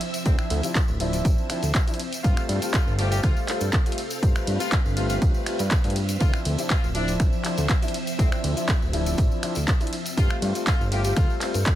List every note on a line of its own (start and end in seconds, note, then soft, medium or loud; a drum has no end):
0.00 2.20 F3 medium
0.00 10.13 C4 medium
0.00 2.20 E5 medium
0.00 open hi-hat loud
0.00 ride medium
0.14 closed hi-hat medium
0.14 tambourine medium
0.26 0.36 D2 loud
0.26 0.60 F3 medium
0.26 0.34 C4 medium
0.26 0.60 C4 medium
0.26 0.61 D4 medium
0.26 0.61 E4 medium
0.26 kick loud
0.26 closed hi-hat medium
0.26 ride medium
0.26 tambourine medium
0.38 0.46 C4 medium
0.38 finger snap medium
0.38 tambourine soft
0.50 0.61 D2 loud
0.50 open hi-hat loud
0.50 ride medium
0.63 0.74 F3 medium
0.63 0.74 C4 medium
0.63 0.74 D4 medium
0.63 0.75 E4 medium
0.63 closed hi-hat medium
0.63 tambourine medium
0.75 kick loud
0.75 clap loud
0.75 closed hi-hat medium
0.75 ride medium
0.75 tambourine medium
0.88 1.22 D1 medium
0.88 tambourine soft
1.00 1.47 F3 medium
1.00 1.47 C4 medium
1.00 1.47 D4 medium
1.00 1.47 E4 loud
1.00 open hi-hat loud
1.00 ride medium
1.13 closed hi-hat medium
1.13 tambourine medium
1.25 1.36 A1 medium
1.25 kick loud
1.25 closed hi-hat medium
1.25 ride medium
1.25 tambourine medium
1.38 tambourine soft
1.49 1.61 F3 medium
1.49 1.62 C4 medium
1.49 1.62 D4 medium
1.49 1.62 E4 medium
1.49 finger snap medium
1.49 open hi-hat loud
1.49 ride medium
1.63 1.73 D2 medium
1.63 closed hi-hat medium
1.63 tambourine medium
1.75 kick loud
1.75 clap loud
1.75 closed hi-hat medium
1.75 ride medium
1.75 tambourine medium
1.87 1.98 F3 medium
1.87 1.98 C4 medium
1.87 1.98 D4 medium
1.87 1.99 E4 medium
1.87 closed hi-hat soft
1.87 tambourine soft
1.94 closed hi-hat medium
2.00 open hi-hat loud
2.00 ride medium
2.12 closed hi-hat medium
2.12 tambourine medium
2.24 2.35 G2 loud
2.24 2.59 G3 medium
2.24 2.59 A3 medium
2.24 2.59 C4 medium
2.24 2.43 F4 loud
2.24 2.59 F4 medium
2.24 4.20 A4 medium
2.24 6.17 F5 medium
2.24 kick loud
2.24 closed hi-hat medium
2.24 ride medium
2.24 tambourine medium
2.37 finger snap medium
2.37 tambourine soft
2.49 2.60 G2 loud
2.49 open hi-hat loud
2.49 ride medium
2.62 2.73 G3 medium
2.62 2.73 A3 medium
2.62 2.73 C4 medium
2.62 2.73 F4 medium
2.62 closed hi-hat medium
2.62 tambourine medium
2.74 2.92 F4 loud
2.74 kick loud
2.74 clap loud
2.74 closed hi-hat medium
2.74 ride medium
2.74 tambourine medium
2.87 3.20 G1 medium
2.87 tambourine soft
2.99 3.45 G3 medium
2.99 3.45 A3 medium
2.99 3.45 C4 medium
2.99 3.46 F4 loud
2.99 3.07 G4 medium
2.99 open hi-hat loud
2.99 ride medium
3.11 3.19 G4 medium
3.11 closed hi-hat medium
3.11 tambourine medium
3.23 3.34 D2 medium
3.23 3.42 F4 medium
3.23 finger snap medium
3.23 kick loud
3.23 closed hi-hat medium
3.23 ride medium
3.23 tambourine medium
3.37 tambourine soft
3.48 3.60 G3 medium
3.48 3.60 A3 medium
3.48 3.60 C4 medium
3.48 3.60 F4 loud
3.48 clap medium
3.48 open hi-hat loud
3.48 ride medium
3.61 3.71 G2 medium
3.61 closed hi-hat medium
3.61 tambourine medium
3.72 kick loud
3.72 clap loud
3.72 closed hi-hat medium
3.72 ride medium
3.72 tambourine medium
3.86 3.97 G3 medium
3.86 3.97 A3 medium
3.86 3.97 C4 medium
3.86 3.97 F4 medium
3.86 closed hi-hat soft
3.86 tambourine soft
3.92 closed hi-hat medium
3.98 open hi-hat loud
3.98 ride medium
4.10 closed hi-hat medium
4.10 tambourine medium
4.22 4.33 G2 loud
4.22 4.57 G3 medium
4.22 4.57 A3 medium
4.22 4.57 C4 medium
4.22 4.58 F4 medium
4.22 6.19 B4 medium
4.22 kick loud
4.22 closed hi-hat medium
4.22 ride medium
4.22 tambourine medium
4.36 finger snap medium
4.36 tambourine soft
4.47 4.58 G2 loud
4.47 open hi-hat loud
4.47 ride medium
4.60 4.71 G3 medium
4.60 4.71 A3 medium
4.60 4.71 C4 medium
4.60 4.78 F4 medium
4.60 4.71 F4 medium
4.60 closed hi-hat medium
4.60 tambourine medium
4.72 kick loud
4.72 clap loud
4.72 closed hi-hat medium
4.72 ride medium
4.72 tambourine medium
4.85 5.18 G1 medium
4.85 tambourine soft
4.96 5.44 G3 medium
4.96 5.44 A3 medium
4.96 5.44 C4 medium
4.96 5.05 F4 medium
4.96 5.44 F4 loud
4.96 open hi-hat loud
4.96 ride medium
5.09 5.17 F4 medium
5.09 closed hi-hat medium
5.09 tambourine medium
5.22 5.32 D2 medium
5.22 kick loud
5.22 closed hi-hat medium
5.22 ride medium
5.22 tambourine medium
5.34 tambourine soft
5.46 5.58 G3 medium
5.46 5.58 A3 medium
5.46 5.58 C4 medium
5.46 5.58 F4 medium
5.46 finger snap medium
5.46 open hi-hat loud
5.46 ride medium
5.59 5.69 G2 medium
5.59 closed hi-hat soft
5.59 tambourine medium
5.71 kick loud
5.71 clap loud
5.71 closed hi-hat medium
5.71 ride medium
5.71 tambourine medium
5.84 6.18 G2 medium
5.84 5.95 G3 medium
5.84 5.95 A3 medium
5.84 5.95 C4 medium
5.84 5.95 F4 medium
5.84 closed hi-hat soft
5.84 tambourine soft
5.90 closed hi-hat medium
5.96 open hi-hat loud
5.96 ride medium
6.09 closed hi-hat medium
6.09 tambourine medium
6.20 6.31 D2 medium
6.20 6.55 F3 medium
6.20 10.14 F3 medium
6.20 6.56 C4 medium
6.20 6.56 D4 medium
6.20 6.56 E4 medium
6.20 6.39 F4 loud
6.20 10.14 E5 medium
6.20 kick loud
6.20 closed hi-hat medium
6.20 ride medium
6.20 tambourine medium
6.34 finger snap medium
6.34 tambourine soft
6.45 6.56 D2 loud
6.45 open hi-hat loud
6.45 ride medium
6.58 6.69 F3 medium
6.58 6.69 C4 medium
6.58 6.69 D4 medium
6.58 6.70 E4 medium
6.58 closed hi-hat medium
6.58 tambourine medium
6.70 6.89 F4 loud
6.70 kick loud
6.70 clap loud
6.70 closed hi-hat medium
6.70 ride medium
6.70 tambourine medium
6.84 7.17 D1 medium
6.84 tambourine soft
6.95 7.42 F3 medium
6.95 7.42 C4 medium
6.95 7.14 D4 loud
6.95 7.42 D4 medium
6.95 7.42 E4 loud
6.95 open hi-hat medium
6.95 ride medium
7.08 closed hi-hat medium
7.08 tambourine medium
7.20 7.31 A1 medium
7.20 finger snap medium
7.20 kick loud
7.20 closed hi-hat medium
7.20 ride medium
7.20 tambourine medium
7.33 tambourine soft
7.44 7.56 F3 medium
7.44 7.56 C4 medium
7.44 7.57 D4 medium
7.44 7.57 E4 medium
7.44 clap medium
7.44 open hi-hat loud
7.44 ride medium
7.58 7.68 D2 medium
7.58 closed hi-hat medium
7.58 tambourine medium
7.69 kick loud
7.69 clap loud
7.69 closed hi-hat medium
7.69 ride medium
7.69 tambourine medium
7.82 7.93 F3 medium
7.82 7.93 C4 medium
7.82 7.93 D4 medium
7.82 7.93 E4 medium
7.82 closed hi-hat soft
7.82 tambourine soft
7.88 closed hi-hat medium
7.94 open hi-hat loud
7.94 ride medium
8.07 closed hi-hat medium
8.07 tambourine medium
8.19 8.30 D2 loud
8.19 8.54 F3 medium
8.19 8.27 C4 medium
8.19 8.54 C4 medium
8.19 8.54 D4 medium
8.19 8.54 E4 medium
8.19 kick loud
8.19 closed hi-hat medium
8.19 ride medium
8.19 tambourine medium
8.32 8.40 C4 medium
8.32 finger snap medium
8.32 tambourine soft
8.44 8.55 D2 medium
8.44 open hi-hat loud
8.44 ride medium
8.56 8.67 F3 medium
8.56 8.67 C4 medium
8.56 8.67 D4 medium
8.56 8.68 E4 medium
8.56 closed hi-hat medium
8.56 tambourine medium
8.68 kick loud
8.68 clap loud
8.68 closed hi-hat medium
8.68 ride medium
8.68 tambourine medium
8.82 9.15 D1 medium
8.82 tambourine soft
8.93 9.40 F3 medium
8.93 9.40 C4 medium
8.93 9.40 D4 medium
8.93 9.40 E4 loud
8.93 open hi-hat medium
8.93 ride medium
9.06 closed hi-hat medium
9.06 tambourine medium
9.18 9.29 A1 medium
9.18 kick loud
9.18 closed hi-hat medium
9.18 ride medium
9.18 tambourine medium
9.31 tambourine soft
9.43 9.55 F3 medium
9.43 9.55 C4 medium
9.43 9.55 D4 medium
9.43 9.55 E4 medium
9.43 finger snap medium
9.43 open hi-hat loud
9.43 ride medium
9.55 9.66 D2 medium
9.55 closed hi-hat medium
9.55 tambourine medium
9.68 kick loud
9.68 clap loud
9.68 closed hi-hat medium
9.68 ride medium
9.68 tambourine medium
9.80 9.91 F3 medium
9.80 9.91 C4 medium
9.80 9.92 D4 medium
9.80 9.92 E4 medium
9.80 closed hi-hat soft
9.80 tambourine soft
9.87 closed hi-hat medium
9.93 open hi-hat medium
9.93 ride medium
10.06 closed hi-hat medium
10.06 tambourine medium
10.17 10.28 G2 loud
10.17 10.52 G3 medium
10.17 10.52 A3 medium
10.17 11.75 C4 medium
10.17 10.52 C4 medium
10.17 10.37 F4 loud
10.17 10.52 F4 medium
10.17 11.75 A4 medium
10.17 11.75 F5 medium
10.17 kick loud
10.17 closed hi-hat medium
10.17 ride medium
10.17 tambourine medium
10.30 finger snap medium
10.30 tambourine soft
10.42 10.53 G2 loud
10.42 open hi-hat loud
10.42 ride medium
10.55 10.66 G3 medium
10.55 10.66 A3 medium
10.55 10.66 C4 medium
10.55 10.66 F4 medium
10.55 closed hi-hat medium
10.55 tambourine medium
10.67 10.86 F4 loud
10.67 kick loud
10.67 clap loud
10.67 closed hi-hat medium
10.67 ride medium
10.67 tambourine medium
10.80 11.13 G1 medium
10.80 tambourine soft
10.92 11.39 G3 medium
10.92 11.39 A3 medium
10.92 11.39 C4 medium
10.92 11.39 F4 loud
10.92 11.00 G4 medium
10.92 open hi-hat medium
10.92 ride medium
11.04 11.13 G4 medium
11.04 closed hi-hat medium
11.04 tambourine medium
11.16 11.27 D2 medium
11.16 11.36 F4 medium
11.16 finger snap medium
11.16 kick loud
11.16 closed hi-hat medium
11.16 ride medium
11.16 tambourine medium
11.30 tambourine soft
11.41 11.53 G3 medium
11.41 11.53 A3 medium
11.41 11.53 C4 medium
11.41 11.53 F4 medium
11.41 clap medium
11.41 open hi-hat loud
11.41 ride medium
11.54 11.64 G2 medium
11.54 closed hi-hat medium
11.54 tambourine medium
11.66 kick loud
11.66 clap loud
11.66 closed hi-hat medium
11.66 ride medium